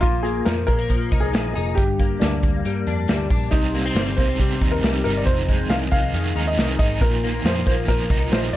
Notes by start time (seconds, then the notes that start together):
0.01 A#1 A#2 F4, kick, closed hi-hat
0.23 A#3 G#4, closed hi-hat
0.45 F2 F3 A#4, snare, closed hi-hat
0.67 A#2 G#3 A#4, kick, closed hi-hat
0.79 A#3
0.90 A#2 F3, kick, closed hi-hat
1.12 C2 D#4, kick, closed hi-hat
1.20 G#4
1.33 A#1 F3, snare, closed hi-hat
1.54 F1 D#4 G#4, closed hi-hat
1.75 G1 G2 G4, kick, closed hi-hat
2.00 A#3, kick, closed hi-hat
2.20 D2 G3 D4, snare, closed hi-hat
2.43 D2 A#3, kick, closed hi-hat
2.65 G2 G3, closed hi-hat
2.87 F2 D4, closed hi-hat
3.08 D2 G3, snare, closed hi-hat
3.30 A#1 D4, kick, open hi-hat
3.51 C2 C3 G3 C4 D#4, kick, closed hi-hat
3.74 G3 A#3 C4 D#4, closed hi-hat
3.86 C4
3.95 G1 C3 G3 C4 D#4 C5, snare, closed hi-hat
4.16 C2 G3 A#3 C4 D#4 C5, kick, closed hi-hat
4.29 C4
4.39 C3 G3 C4 D#4, kick, closed hi-hat
4.61 D#2 G3 C4 D#4, kick, closed hi-hat
4.71 A#4
4.83 C2 C3 G3 C4 D#4, snare, closed hi-hat
5.04 G1 G3 C4 D#4 A#4, closed hi-hat
5.17 D5
5.26 F1 F2 C3 D#3 G#3 D#4 C5, kick, closed hi-hat
5.48 D#3 G#3 D#4, kick, closed hi-hat
5.70 C2 C3 D#3 G#3 D#4 F5, snare, closed hi-hat
5.91 C2 G#3 D#4 F5, kick, closed hi-hat
5.95 D#3
6.14 F2 C3 D#3 G#3 D#4, closed hi-hat
6.36 D#2 D#3 G#3 D#4, closed hi-hat
6.47 D#5
6.57 C2 C3 D#3 G#3 D#4, snare, closed hi-hat
6.79 G#1 D#3 G#3 D#4 D#5, kick, closed hi-hat
7.01 A#1 A#2 F3 A#3 D#4 A#4, kick, closed hi-hat
7.23 F3 A#3 D#4, closed hi-hat
7.44 F2 A#2 F3 A#3 D#4 C5, snare, closed hi-hat
7.66 A#2 A#3 D#4 C5, kick, closed hi-hat
7.70 F3
7.88 A#2 F3 A#3 D#4 A#4, kick, closed hi-hat
8.10 C2 F3 A#3 D#4, kick, closed hi-hat
8.31 A#1 A#2 F3 A#3 D#4 C5, snare, closed hi-hat
8.53 F1 D5